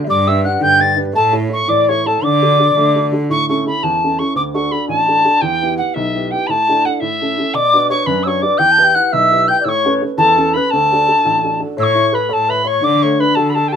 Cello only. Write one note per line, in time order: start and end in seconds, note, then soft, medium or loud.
0.09 0.53 G2 loud
0.61 1.05 G2 medium
1.14 1.59 A2 loud
1.68 2.12 A2 medium
2.23 2.66 D3 medium
2.75 3.19 D3 medium
11.79 11.94 A2 loud
12.31 12.75 A2 medium
12.84 13.00 D3 loud
13.36 13.76 D3 medium